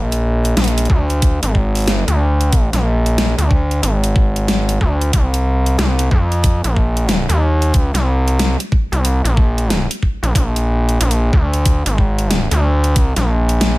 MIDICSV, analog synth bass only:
0, 0, Header, 1, 2, 480
1, 0, Start_track
1, 0, Tempo, 652174
1, 1860, Time_signature, 4, 2, 24, 8
1, 10144, End_track
2, 0, Start_track
2, 0, Title_t, "Analog synth bass"
2, 0, Program_c, 0, 38
2, 0, Note_on_c, 0, 34, 87
2, 406, Note_off_c, 0, 34, 0
2, 421, Note_on_c, 0, 34, 91
2, 646, Note_off_c, 0, 34, 0
2, 661, Note_on_c, 0, 38, 99
2, 1027, Note_off_c, 0, 38, 0
2, 1051, Note_on_c, 0, 32, 93
2, 1375, Note_off_c, 0, 32, 0
2, 1375, Note_on_c, 0, 31, 93
2, 1507, Note_off_c, 0, 31, 0
2, 1529, Note_on_c, 0, 38, 96
2, 1986, Note_off_c, 0, 38, 0
2, 2010, Note_on_c, 0, 34, 89
2, 2466, Note_off_c, 0, 34, 0
2, 2489, Note_on_c, 0, 38, 97
2, 2805, Note_off_c, 0, 38, 0
2, 2817, Note_on_c, 0, 32, 84
2, 3524, Note_off_c, 0, 32, 0
2, 3541, Note_on_c, 0, 38, 87
2, 3766, Note_off_c, 0, 38, 0
2, 3781, Note_on_c, 0, 36, 97
2, 4247, Note_off_c, 0, 36, 0
2, 4258, Note_on_c, 0, 36, 95
2, 4485, Note_off_c, 0, 36, 0
2, 4500, Note_on_c, 0, 41, 102
2, 4867, Note_off_c, 0, 41, 0
2, 4890, Note_on_c, 0, 34, 88
2, 5346, Note_off_c, 0, 34, 0
2, 5366, Note_on_c, 0, 39, 93
2, 5690, Note_off_c, 0, 39, 0
2, 5690, Note_on_c, 0, 38, 93
2, 5825, Note_off_c, 0, 38, 0
2, 5845, Note_on_c, 0, 36, 94
2, 6304, Note_off_c, 0, 36, 0
2, 6566, Note_on_c, 0, 36, 89
2, 6785, Note_off_c, 0, 36, 0
2, 6804, Note_on_c, 0, 34, 98
2, 7263, Note_off_c, 0, 34, 0
2, 7527, Note_on_c, 0, 34, 94
2, 7604, Note_off_c, 0, 34, 0
2, 7620, Note_on_c, 0, 34, 91
2, 8086, Note_off_c, 0, 34, 0
2, 8100, Note_on_c, 0, 34, 91
2, 8326, Note_off_c, 0, 34, 0
2, 8340, Note_on_c, 0, 38, 98
2, 8707, Note_off_c, 0, 38, 0
2, 8729, Note_on_c, 0, 32, 93
2, 9186, Note_off_c, 0, 32, 0
2, 9211, Note_on_c, 0, 38, 100
2, 9535, Note_off_c, 0, 38, 0
2, 9535, Note_on_c, 0, 37, 100
2, 9667, Note_off_c, 0, 37, 0
2, 9690, Note_on_c, 0, 34, 94
2, 10144, Note_off_c, 0, 34, 0
2, 10144, End_track
0, 0, End_of_file